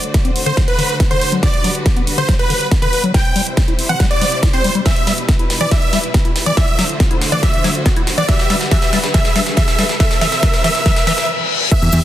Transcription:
Already playing: D3 A3 F#4 C5, riser
0.04 closed hi-hat
0.14 A3, kick, snare, closed hi-hat
0.25 C4, closed hi-hat
0.36 open hi-hat
0.46 D3 C5, closed hi-hat
0.57 F#3, kick, snare, closed hi-hat
0.68 B4, closed hi-hat
0.78 D3, open hi-hat
0.89 closed hi-hat
1.00 C4, kick, snare, closed hi-hat
1.11 D3 C5, closed hi-hat
1.21 open hi-hat
1.32 F#3, closed hi-hat
1.43 D3 G3 B4 D5, kick, snare, closed hi-hat
1.54 closed hi-hat
1.64 F#3, open hi-hat
1.75 closed hi-hat
1.86 G3, kick, snare, closed hi-hat
1.96 B3, closed hi-hat
2.07 open hi-hat
2.18 D3 C5, closed hi-hat
2.28 F#3, kick, snare, closed hi-hat
2.39 B4, closed hi-hat
2.50 D3, open hi-hat
2.61 closed hi-hat
2.71 B3, kick, snare, closed hi-hat
2.82 D3 B4, closed hi-hat
2.93 open hi-hat
3.03 F#3, closed hi-hat
3.14 C3 E3 G3 E4 C5 G5, kick, snare, closed hi-hat
3.25 closed hi-hat
3.36 G3, open hi-hat
3.47 closed hi-hat
3.57 C4, kick, snare, closed hi-hat
3.68 E4, closed hi-hat
3.79 open hi-hat
3.89 E3 F#5, closed hi-hat
4.00 G3, kick, snare, closed hi-hat
4.11 D5, closed hi-hat
4.21 G3, open hi-hat
4.32 closed hi-hat
4.43 E4, kick, snare, closed hi-hat
4.53 C4 C5, closed hi-hat
4.64 G3, open hi-hat
4.75 G3, closed hi-hat
4.85 B2 E3 E4 B4 E5, kick, snare, closed hi-hat
4.96 closed hi-hat
5.07 G3, snare, open hi-hat
5.18 closed hi-hat
5.28 B3, kick, snare, closed hi-hat
5.39 E4, closed hi-hat
5.50 snare, open hi-hat
5.61 E3 D5, closed hi-hat
5.71 E3 E5, kick, snare, closed hi-hat
5.82 closed hi-hat
5.93 G3, snare, open hi-hat
6.04 closed hi-hat
6.14 B3, kick, snare, closed hi-hat
6.25 E4, closed hi-hat
6.36 snare, open hi-hat
6.46 E3 D5, closed hi-hat
6.57 D3 E3 A3 F#4 C5 E5, kick, snare, closed hi-hat
6.68 closed hi-hat
6.79 F#3, snare, open hi-hat
6.89 closed hi-hat
7.00 B3, kick, snare, closed hi-hat
7.11 E4, closed hi-hat
7.21 snare, open hi-hat
7.32 E3 D5, closed hi-hat
7.43 E3 E5, kick, snare, closed hi-hat
7.54 closed hi-hat
7.64 F#3, snare, open hi-hat
7.75 closed hi-hat
7.86 B3, kick, snare, closed hi-hat
7.96 E4, closed hi-hat
8.07 snare, open hi-hat
8.18 E3 D5, closed hi-hat
8.28 D3 E3 G3 B4 E5, kick, snare, closed hi-hat
8.39 snare, closed hi-hat
8.50 G3, snare, open hi-hat
8.61 snare, closed hi-hat
8.71 E3 E5, kick, snare, closed hi-hat
8.82 snare, closed hi-hat
8.93 G3, snare, open hi-hat
9.04 snare, closed hi-hat
9.14 E3 E5, kick, snare, closed hi-hat
9.25 snare, closed hi-hat
9.36 G3, snare, open hi-hat
9.46 snare, closed hi-hat
9.57 E3 E5, kick, snare, closed hi-hat
9.68 snare, closed hi-hat
9.79 G3, snare, open hi-hat
9.89 snare, closed hi-hat
10.00 C3 E3 G3 E4 C5 E5, kick, snare, closed hi-hat
10.11 snare, closed hi-hat
10.21 E3 E5, snare, open hi-hat
10.32 snare, closed hi-hat
10.43 E3 E5, kick, snare, closed hi-hat
10.54 snare, closed hi-hat
10.64 E3 E5, snare, open hi-hat
10.75 snare, closed hi-hat
10.86 E3 E5, kick, snare, closed hi-hat, reverse cymbal
10.96 snare, closed hi-hat
11.07 E3 E5, snare, open hi-hat
11.18 snare, closed hi-hat
11.71 E3 G3 B3 G4 E5, kick, closed hi-hat, crash, impact, cabasa
11.82 E2, closed hi-hat, cabasa
11.93 E2, open hi-hat, cabasa

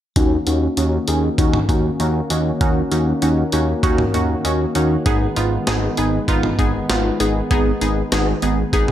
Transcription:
0.16 D#2 D#3 A#3 C#4 D#4 F#4, kick, closed hi-hat
0.47 D#2 C#4 D#4 F#4, closed hi-hat
0.77 D#2 C#4 D#4 F#4, closed hi-hat
1.08 D#2 C#4 D#4 G#4, closed hi-hat
1.38 D#2 C#4 D#4 F#4, kick, closed hi-hat
1.53 mid tom
1.69 D#2 C#4 D#4 F#4, kick, closed hi-hat
2.00 D#2 C#4 D#4 F#4, closed hi-hat
2.30 D#2 C#4 D#4 F#4, closed hi-hat
2.61 D#2 C#4 D#4 F#4, kick, closed hi-hat
2.92 D#2 C#4 D#4 F#4, closed hi-hat
3.22 D#2 C#4 D#4 F#4, closed hi-hat
3.52 D#2 C#4 D#4 F#4, closed hi-hat
3.83 D#2 C#4 D#4 F#4, kick, closed hi-hat
3.98 mid tom
4.14 D#2 C#4 D#4 F#4, closed hi-hat
4.45 D#2 C#4 D#4 F#4, closed hi-hat
4.75 D#2 C#4 D#4 F#4, closed hi-hat
5.06 G#1 G#3 B3 D#4 G#4, kick, closed hi-hat
5.36 G#1 B3 D#4 F4, closed hi-hat
5.67 G#1 B3 D#4 G#4, snare, closed hi-hat
5.97 G#1 B3 D#4 G#4, closed hi-hat
6.28 G#1 B3 D#4 F4, kick, closed hi-hat
6.43 mid tom
6.59 G#1 B3 D#4 G#4, kick, closed hi-hat
6.90 G#1 B3 D#4 F4, snare, closed hi-hat
7.20 G#1 B3 D#4 G#4, closed hi-hat
7.51 G#1 B3 D#4 G#4, kick, closed hi-hat
7.81 G#1 B3 D#4 G#4, closed hi-hat
8.12 G#1 B3 D#4 G#4, snare, closed hi-hat
8.42 G#1 B3 D#4 G#4, closed hi-hat
8.73 G#1 B3 D#4 G#4, kick, closed hi-hat
8.88 mid tom

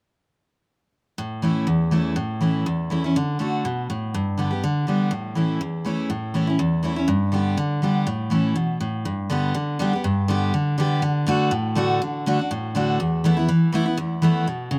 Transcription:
1.18 A2
1.42 E3 A3 C#4 E4
1.67 E2
1.91 E3 A3 C#4 E4
2.16 A2
2.41 E3 A3 C#4 E4
2.66 E2
2.90 E3 A3 C#4 E4
3.04 C#4 E4
3.16 D3
3.39 D3 A3 D4 F#4
3.65 B2
3.90 A2
4.14 G2
4.37 D3 G3 B3 G4
4.51 B3 G4
4.64 D3
4.87 D3 G3 B3 G4
5.11 A2
5.35 E3 A3 C#4 E4
5.61 E2
5.85 E3 A3 C#4 E4
6.10 A2
6.34 E3 A3 C#4 E4
6.47 C#4 E4
6.59 E2
6.83 E3 A3 C#4 E4
6.96 C#4 E4
7.08 G2
7.32 D3 G3 B3 G4
7.57 D3
7.82 D3 G3 B3 G4
8.07 A2
8.30 E3 A3 C#4 E4
8.56 B2
8.80 A2
9.05 G2
9.30 D3 G3 B3 G4
9.54 D3
9.79 D3 G3 B3 G4
9.93 B3 G4
10.04 G2
10.28 D3 G3 B3 G4
10.54 D3
10.78 D3 G3 B3 G4
11.02 D3
11.27 D3 A3 D4 F#4
11.51 A2
11.75 D3 A3 D4 F#4
12.02 D3
12.26 D3 A3 D4 F#4
12.39 D4 F#4
12.51 A2
12.75 D3 A3 D4 F#4
13.00 E2
13.24 E3 A3 B3 E4
13.37 B3 E4
13.48 E3
13.72 E3 A3 B3 E4
13.86 B3 E4
13.97 E2
14.22 E3 A3 B3 E4
14.47 B2
14.71 C#3

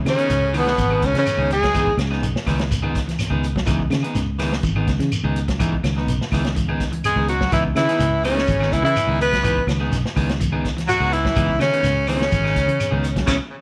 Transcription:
0.05 C#3 D#3 C#4, snare, closed hi-hat, claves, shekere
0.09 C#4
0.18 B3 D#4 G#4, closed hi-hat
0.30 C#2 C#3, closed hi-hat, shekere
0.53 B2 D#3 E3 B3 D#4 G#4, open hi-hat, claves, shekere
0.58 B3
0.67 snare
0.78 G#1 E3, kick, closed hi-hat, shekere
0.90 D#3 B3 D#4 G#4, claves
1.02 C#2 C#3 C#4, kick, closed hi-hat, shekere
1.14 C#3 E3, snare, closed hi-hat
1.19 C#4
1.26 snare, closed hi-hat, claves, shekere
1.37 C#2 D#3 B3 D#4 G#4
1.50 G#3 G#4, closed hi-hat, shekere
1.63 F#3, kick, snare, closed hi-hat
1.74 E3 B3 D#4 G#4, kick, closed hi-hat, claves, shekere
1.87 kick
1.97 C#2, snare, closed hi-hat, claves, shekere
2.11 B3 D#4 G#4, snare
2.22 B1 C#3, closed hi-hat, shekere
2.36 snare
2.46 C#2 D#3 E3 B3 D#4 G#4, kick, snare, open hi-hat, claves, shekere
2.59 snare, closed hi-hat
2.71 muted clean electric guitar stroke, kick, closed hi-hat, shekere
2.82 D#3 B3 D#4 G#4, claves
2.95 kick, snare, closed hi-hat, shekere
3.08 E3, snare, closed hi-hat
3.19 snare, closed hi-hat, claves, shekere
3.30 C#2 D#3 B3 D#4 G#4
3.44 closed hi-hat, shekere
3.56 F#3, kick, snare
3.66 C#2 E3 B3 D#4 G#4, kick, closed hi-hat, claves, shekere
3.80 kick
3.90 C#3 D#3, snare, closed hi-hat, claves, shekere
4.03 B3 D#4 G#4, closed hi-hat
4.15 C#2 C#3, snare, closed hi-hat, shekere
4.39 D#3 E3 B3 D#4 G#4, snare, open hi-hat, claves, shekere
4.52 snare
4.63 G#1 E3, kick, closed hi-hat, shekere
4.76 D#3 B3 D#4 G#4, claves
4.87 C#2, kick, snare, closed hi-hat, shekere
4.99 C#3 E3, snare, closed hi-hat
5.12 closed hi-hat, claves, shekere
5.24 C#2 D#3 B3 D#4 G#4
5.36 closed hi-hat, shekere
5.48 F#3, kick, snare, closed hi-hat
5.60 E3 B3 D#4 G#4, kick, closed hi-hat, claves, shekere
5.72 kick
5.84 C#2 D#3, snare, closed hi-hat, claves, shekere
5.96 B3 D#4, muted clean electric guitar stroke, snare
6.07 B1 C#3, closed hi-hat, shekere
6.21 snare
6.32 C#2 D#3 E3 B3 D#4 G#4, kick, snare, open hi-hat, claves, shekere
6.45 snare, closed hi-hat
6.56 E3, kick, closed hi-hat, shekere
6.68 D#3 B3 D#4 G#4, claves
6.80 kick, snare, closed hi-hat, shekere
6.92 E3, closed hi-hat
7.04 G#3 G#4, closed hi-hat, claves, shekere
7.16 C#2 D#3 B3 D#4 G#4
7.28 F#3 F#4, closed hi-hat, shekere
7.41 F#3, kick, snare
7.52 C#2 E3 B3 D#4 E4, muted clean electric guitar stroke, kick, closed hi-hat, claves, shekere
7.65 kick
7.75 C#3 D#3 E3 E4, snare, closed hi-hat, claves, shekere
7.89 B3 D#4 G#4, snare, closed hi-hat
7.99 C#2 C#3, closed hi-hat, shekere
8.24 C#3 E3 B3 C#4 D#4 G#4, open hi-hat, claves, shekere
8.38 snare
8.47 G#1 E3, kick, closed hi-hat, shekere
8.60 D#3 B3 D#4 G#4, snare, claves
8.72 C#2 E3 E4, kick, closed hi-hat, shekere
8.83 C#3 E3 E4, closed hi-hat
8.96 closed hi-hat, claves, shekere
9.07 C#2 D#3 B3 D#4 G#4
9.21 B3 B4, closed hi-hat, shekere
9.32 F#3, kick, snare, closed hi-hat
9.43 E3 B3 D#4 G#4, kick, closed hi-hat, claves, shekere
9.57 kick
9.67 C#2 D#3, snare, closed hi-hat, claves, shekere
9.80 B3 D#4 G#4
9.91 B1 C#3, snare, closed hi-hat, shekere
10.06 snare
10.16 C#2 D#3 E3 B3 D#4 G#4, kick, open hi-hat, claves, shekere
10.29 snare, closed hi-hat
10.40 E3, kick, closed hi-hat, shekere
10.52 D#3 B3 D#4 G#4, claves
10.65 kick, snare, closed hi-hat, shekere
10.77 E3, snare, closed hi-hat
10.87 F#3 F#4, closed hi-hat, claves, shekere
11.00 C#2 B3 D#4 G#4, muted clean electric guitar stroke
11.11 E3 E4, closed hi-hat, shekere
11.25 F#3, kick, snare
11.36 C#2 E3 B3 D#4 G#4, kick, closed hi-hat, claves, shekere
11.49 kick
11.59 C#3 D#3 C#4, snare, closed hi-hat, claves, shekere
11.72 B3 D#4 G#4, closed hi-hat
11.83 C#2 C#3, snare, closed hi-hat, shekere
12.07 C#3 D#3 E3 B3 C#4 D#4 G#4, open hi-hat, claves, shekere
12.21 snare
12.32 G#1 E3, kick, closed hi-hat, shekere
12.44 D#3 D#4 G#4, muted clean electric guitar stroke, snare, claves
12.56 C#2, kick, closed hi-hat, shekere
12.67 C#3 E3, closed hi-hat
12.80 closed hi-hat, claves, shekere
12.91 C#2 D#3 B3 D#4 G#4
13.04 closed hi-hat, shekere
13.16 F#3, kick, snare, closed hi-hat
13.26 C#2 B2 C#3 E3 B3 C#4 E4, kick, snare, claves, shekere

